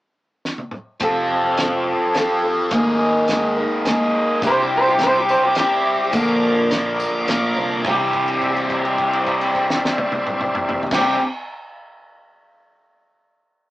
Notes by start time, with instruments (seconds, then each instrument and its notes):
0.45 snare
0.58 high tom
0.71 mid tom
1.00 fingered electric bass F1, steel-string acoustic guitar F3 C4 G4 A4, overdriven electric guitar F4, kick, closed hi-hat
1.57 steel-string acoustic guitar F3 C4 G4 A4, snare, closed hi-hat
2.14 steel-string acoustic guitar F3 C4 G4 A4, overdriven electric guitar F4, snare, closed hi-hat
2.42 steel-string acoustic guitar C4 G4 A4
2.71 fingered electric bass G#1, steel-string acoustic guitar G#3 A#3 D#4 A#4, overdriven electric guitar G#4, kick, closed hi-hat
3.28 steel-string acoustic guitar G#3 A#3 D#4 A#4, snare, closed hi-hat
3.57 steel-string acoustic guitar A#3 D#4 A#4
3.85 steel-string acoustic guitar G#3 A#3 D#4 A#4, snare, closed hi-hat
3.89 overdriven electric guitar G#4
4.42 fingered electric bass C2, steel-string acoustic guitar C3 G3 D4 E4 G4, overdriven electric guitar C4, tonewheel organ D6, kick, closed hi-hat, tambourine
4.47 clean electric guitar C5, tonewheel organ C5 E5 G5
4.60 clean electric guitar G4
4.77 clean electric guitar C5
4.88 clean electric guitar G4
4.98 steel-string acoustic guitar G3 D4 E4 G4, snare, closed hi-hat
5.03 clean electric guitar C5
5.18 clean electric guitar G4
5.29 clean electric guitar C5, tambourine
5.45 clean electric guitar G4
5.55 overdriven electric guitar C3 C4, steel-string acoustic guitar G3 D4 E4 G4, clean electric guitar G4, snare, closed hi-hat
6.12 fingered electric bass A#1, steel-string acoustic guitar A#2 D3 F3 A#3 D4 A#4, tonewheel organ D5 F5, kick, closed hi-hat, tambourine
6.17 tonewheel organ A#4
6.29 tambourine
6.42 tambourine
6.68 steel-string acoustic guitar F3 A#3 D4 A#4, snare, closed hi-hat
7.00 tambourine
7.25 fingered electric bass A#1, overdriven electric guitar A#2 D3, steel-string acoustic guitar F3 A#3 D4 A#4, snare, closed hi-hat, tambourine
7.30 overdriven electric guitar F3
7.55 fingered electric bass C2, steel-string acoustic guitar F3 A#3 D4 A#4, tambourine
7.79 steel-string acoustic guitar C3 E3
7.84 fingered electric bass C2, overdriven electric guitar C3 G4, steel-string acoustic guitar G3, tonewheel organ C4 C5 D5 E5, kick, crash, tambourine
7.90 steel-string acoustic guitar C4 D4, clean electric guitar G4
7.96 steel-string acoustic guitar G4
8.13 kick, crash
8.28 crash
8.42 kick, crash
8.56 crash
8.70 kick, crash
8.85 crash
8.98 kick, crash
9.13 crash
9.27 kick, crash
9.41 crash
9.55 kick, crash
9.70 snare
9.85 snare
9.98 high tom
10.12 high tom
10.27 mid tom
10.41 mid tom
10.55 mid tom
10.69 mid tom
10.83 steel-string acoustic guitar C3, floor tom
10.91 fingered electric bass C2, overdriven electric guitar C3, steel-string acoustic guitar E3 G3, tonewheel organ C4 C5 D5 E5, clean electric guitar G4, kick, snare, crash
10.96 steel-string acoustic guitar C4, overdriven electric guitar G4
11.00 steel-string acoustic guitar D4 G4